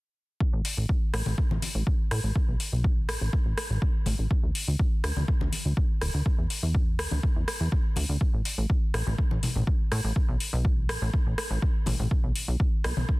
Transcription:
0.40 kick
0.53 analog synth bass A1
0.65 open hi-hat
0.77 analog synth bass A1
0.89 kick
1.14 analog synth bass A1, cross-stick, open hi-hat
1.26 analog synth bass A1, high conga
1.38 kick
1.51 analog synth bass A1, high conga
1.62 open hi-hat, high conga
1.75 analog synth bass A1
1.87 kick
2.11 analog synth bass A2, cross-stick, open hi-hat
2.24 analog synth bass A1
2.36 kick
2.48 analog synth bass B1
2.60 open hi-hat
2.73 analog synth bass B1
2.84 kick
3.09 analog synth bass A1, cross-stick, open hi-hat
3.21 analog synth bass A1
3.33 kick
3.46 analog synth bass A1
3.58 cross-stick, open hi-hat
3.70 analog synth bass A1
3.82 kick
4.06 analog synth bass A1, open hi-hat, high conga
4.19 analog synth bass A1
4.31 kick
4.43 analog synth bass D2
4.55 open hi-hat
4.68 analog synth bass D2
4.79 kick
5.04 analog synth bass D2, cross-stick, open hi-hat
5.16 analog synth bass D2, high conga
5.28 kick
5.41 analog synth bass D2, high conga
5.52 open hi-hat, high conga
5.65 analog synth bass D2
5.77 kick
6.01 analog synth bass D1, cross-stick, open hi-hat
6.14 analog synth bass D2
6.26 kick
6.38 analog synth bass E2
6.50 open hi-hat
6.63 analog synth bass E2
6.75 kick
6.99 analog synth bass D2, cross-stick, open hi-hat
7.11 analog synth bass D2, high conga
7.23 kick
7.36 analog synth bass E2
7.48 cross-stick, open hi-hat
7.60 analog synth bass E2
7.72 kick
7.96 analog synth bass D2, open hi-hat, high conga
8.09 analog synth bass D2
8.21 kick
8.34 analog synth bass A1
8.45 open hi-hat
8.58 analog synth bass A1
8.70 kick
8.94 analog synth bass A1, cross-stick, open hi-hat
9.07 analog synth bass A1, high conga
9.18 kick
9.31 analog synth bass A1, high conga
9.43 open hi-hat, high conga, low conga
9.56 analog synth bass A1, low conga
9.67 kick
9.92 analog synth bass A2, cross-stick, open hi-hat
10.04 analog synth bass A1
10.16 kick
10.29 analog synth bass B1
10.40 open hi-hat
10.53 analog synth bass B1
10.65 kick
10.89 analog synth bass A1, cross-stick, open hi-hat
11.02 analog synth bass A1
11.14 kick
11.26 analog synth bass A1
11.38 cross-stick, open hi-hat
11.51 analog synth bass A1
11.62 kick
11.86 analog synth bass A1, open hi-hat, high conga, low conga
11.99 analog synth bass A1, low conga
12.11 kick
12.24 analog synth bass B1
12.36 open hi-hat
12.48 analog synth bass B1
12.60 kick
12.84 analog synth bass B1, cross-stick, open hi-hat
12.97 analog synth bass B1, high conga
13.09 kick

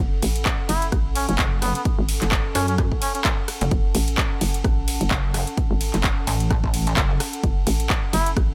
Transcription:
Already playing: ambient pad C#4 A4 F#5 B5
0.00 fm bass F#1
0.22 fm bass A1, open hi-hat, ride
0.36 closed hi-hat
0.45 kick, clap, closed hi-hat
0.67 fm bass F#1, muted trumpet E4, ambient pad A5, open hi-hat, ride
0.82 closed hi-hat
0.92 fm bass A1, kick, cross-stick, closed hi-hat
1.15 muted trumpet C#4, open hi-hat, ride
1.29 fm bass F#1, muted trumpet C#4, closed hi-hat
1.38 wobble bass F#1, kick, clap, closed hi-hat
1.62 muted trumpet B3, cross-stick, open hi-hat, ride
1.75 muted trumpet B3, closed hi-hat
1.85 kick, closed hi-hat
1.99 fm bass G#1
2.09 open hi-hat, ride
2.21 fm bass F#1, clap, closed hi-hat
2.31 kick, clap, closed hi-hat
2.55 wobble bass F#2, muted trumpet C#4, open hi-hat, ride
2.68 muted trumpet C#4, closed hi-hat
2.78 kick, cross-stick, closed hi-hat
2.92 kick
3.02 muted trumpet C#4, open hi-hat, ride
3.15 muted trumpet C#4, closed hi-hat
3.25 kick, clap, closed hi-hat
3.48 cross-stick, open hi-hat, ride
3.61 wobble bass F#1, closed hi-hat
3.71 fm bass F#1, kick, closed hi-hat
3.95 fm bass A1, open hi-hat, ride
4.08 closed hi-hat
4.18 kick, clap, closed hi-hat
4.41 fm bass F#1, open hi-hat, ride
4.54 closed hi-hat
4.64 fm bass A1, kick, cross-stick, closed hi-hat
4.88 open hi-hat, ride
5.01 fm bass F#1, closed hi-hat
5.11 wobble bass F#1, kick, clap, closed hi-hat
5.34 cross-stick, open hi-hat, ride
5.47 closed hi-hat
5.57 kick, closed hi-hat
5.71 fm bass G#1
5.81 open hi-hat, ride
5.94 fm bass F#1, clap, closed hi-hat
6.04 kick, clap, closed hi-hat
6.27 wobble bass A1, open hi-hat, ride
6.40 closed hi-hat
6.51 kick, cross-stick, closed hi-hat
6.64 wobble bass A1, kick
6.74 open hi-hat, ride
6.87 closed hi-hat
6.97 wobble bass F#1, kick, clap, closed hi-hat
7.20 cross-stick, open hi-hat, ride
7.33 closed hi-hat
7.44 fm bass F#1, kick, closed hi-hat
7.67 fm bass A1, open hi-hat, ride
7.80 closed hi-hat
7.90 kick, clap, closed hi-hat
8.11 fm bass F#1, muted trumpet E4, ambient pad G#5, open hi-hat, ride
8.26 closed hi-hat
8.37 fm bass A1, kick, cross-stick, closed hi-hat

